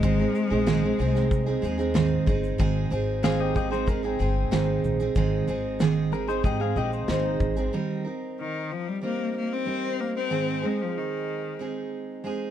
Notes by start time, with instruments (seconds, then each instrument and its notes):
Already playing: upright bass G#1, cello G#3
0.03 steel-string acoustic guitar G#2 D#3 G#3 C4 D#4 G#4, kick, shaker
0.19 steel-string acoustic guitar G#3 C4 D#4 G#4
0.35 shaker
0.50 upright bass A#1, steel-string acoustic guitar G#3 C4 D#4 G#4
0.66 steel-string acoustic guitar G#2 D#3 G#3 C4 D#4 G#4, snare, shaker
0.83 steel-string acoustic guitar G#3 C4 D#4 G#4
0.99 upright bass C2, steel-string acoustic guitar G#3 C4 D#4 G#4, shaker
1.15 steel-string acoustic guitar G#3 C4 D#4 G#4, snare, shaker
1.31 kick, shaker
1.46 steel-string acoustic guitar G#3 C4 D#4 G#4
1.62 upright bass D#2, steel-string acoustic guitar G#3 C4 D#4 G#4, shaker
1.78 steel-string acoustic guitar G#3 C4 D#4 G#4, shaker
1.94 steel-string acoustic guitar G#2 D#3 G#3 C4 D#4 G#4, snare, shaker
2.26 upright bass G1, steel-string acoustic guitar G#3 C4 D#4 G#4, kick, shaker
2.43 shaker
2.58 upright bass G#1, steel-string acoustic guitar G#2 D#3 G#3 C4 D#4 G#4, kick, shaker
2.90 upright bass G#1, steel-string acoustic guitar G#3 C4 D#4 G#4, shaker
3.23 steel-string acoustic guitar G#2 D#3 G#3 C4 D#4 G#4, pedal steel guitar G#4 F5, snare, shaker
3.40 pedal steel guitar G4 D#5
3.54 steel-string acoustic guitar G#3 C4 D#4 G#4, pedal steel guitar G4 D#5, kick, shaker
3.71 steel-string acoustic guitar G#3 C4 D#4 G#4, pedal steel guitar D#4 C5, shaker
3.87 steel-string acoustic guitar G#3 C4 D#4 G#4, pedal steel guitar A#4, kick, shaker
4.03 steel-string acoustic guitar G#3 C4 D#4 G#4, pedal steel guitar C4 G#4
4.19 upright bass G1, steel-string acoustic guitar G#3 C4 D#4 G#4, shaker
4.51 upright bass G#1, steel-string acoustic guitar G#2 D#3 G#3 C4 D#4 G#4, snare, shaker
4.84 upright bass A#1, shaker
5.00 steel-string acoustic guitar G#3 C4 D#4 G#4, shaker
5.16 upright bass G#1, steel-string acoustic guitar G#2 D#3 G#3 C4 D#4 G#4, kick, shaker
5.47 upright bass G#1, steel-string acoustic guitar G#3 C4 D#4 G#4, shaker
5.80 steel-string acoustic guitar G#2 D#3 G#3 C4 D#4 G#4, snare, shaker
6.12 steel-string acoustic guitar G#3 C4 D#4 G#4, pedal steel guitar A#4, shaker
6.28 steel-string acoustic guitar G#3 C4 D#4 G#4, pedal steel guitar D#4 C5, shaker
6.43 upright bass G#2, steel-string acoustic guitar G#3 C4 D#4 G#4, pedal steel guitar G4 D#5, kick, shaker
6.60 steel-string acoustic guitar G#3 C4 D#4 G#4, pedal steel guitar G#4 F5
6.76 upright bass A#1, steel-string acoustic guitar G#3 C4 D#4 G#4, pedal steel guitar G4 D#5, shaker
6.93 pedal steel guitar D#4 C5, shaker
7.08 upright bass G#1, steel-string acoustic guitar G#2 D#3 G#3 C4 D#4 G#4, snare, shaker
7.40 upright bass G#1, kick, shaker
7.56 steel-string acoustic guitar G#3 C4 D#4 G#4, shaker
7.73 steel-string acoustic guitar D#3 G3 C4 D#4 A#4
8.04 steel-string acoustic guitar C4 D#4 A#4
8.40 cello D#3
8.72 cello F3
8.88 cello G3
9.01 steel-string acoustic guitar G3 C4 D#4 A#4, cello A#3
9.37 cello A#3
9.53 cello C4
9.65 steel-string acoustic guitar G3 C4 D#4 A#4
10.01 cello A#3
10.16 cello C4
10.30 steel-string acoustic guitar G#2 D#3 G#3 C4 D#4 G#4
10.62 cello G#3, steel-string acoustic guitar G#3 C4 D#4 G#4
10.82 cello F3
10.98 cello D#3
11.59 steel-string acoustic guitar G#3 C4 D#4 G#4
12.24 steel-string acoustic guitar G#3 C4 D#4 G#4